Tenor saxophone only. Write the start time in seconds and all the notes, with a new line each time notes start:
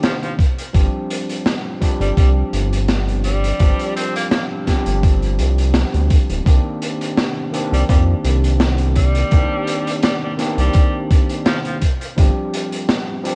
0.04 F3
0.23 F3
2.01 G3
2.18 G3
3.24 G3
3.96 C4
4.16 A#3
4.32 A#3
7.73 G3
7.89 G3
8.96 G3
10.03 G3
10.23 G3
10.59 G3
11.46 F3
11.65 F3